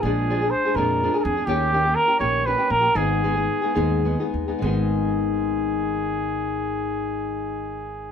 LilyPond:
<<
  \new Staff \with { instrumentName = "Trumpet" } { \time 6/8 \key gis \minor \tempo 4. = 72 gis'4 bis'8 ais'8.~ ais'32 ais'32 gis'8 | g'4 ais'8 cis''8 b'8 ais'8 | gis'2~ gis'8 r8 | gis'2.~ |
gis'2. | }
  \new Staff \with { instrumentName = "Nylon-string guitar" } { \time 6/8 \key gis \minor <ais, eis gis d' gis'>8 <eis gis d' gis'>16 <gis d' gis'>8 <gis d' gis'>16 <ais, eis gis d' gis'>8 <eis gis d' gis'>16 <gis d' gis'>8 <gis d' gis'>16 | <dis ais cis' g'>8 <dis ais cis' g'>16 <ais cis' g'>8 <ais cis' g'>16 <dis ais cis' g'>8 <dis ais cis' g'>16 <ais cis' g'>8 <ais cis' g'>16 | <gis, dis gis b dis' gis'>8 <gis b dis' gis'>16 <gis b dis' gis'>8 <gis b dis' gis'>16 <gis, dis gis b dis' gis'>8 <gis b dis' gis'>16 <gis b dis' gis'>8 <gis b dis' gis'>16 | <gis, dis gis b dis' gis'>2.~ |
<gis, dis gis b dis' gis'>2. | }
  \new Staff \with { instrumentName = "Upright bass" } { \clef bass \time 6/8 \key gis \minor ais,,4. eis,4 eis,8 | dis,4. ais,,4 ais,,8 | gis,,4. dis,4 dis,8 | gis,,2.~ |
gis,,2. | }
>>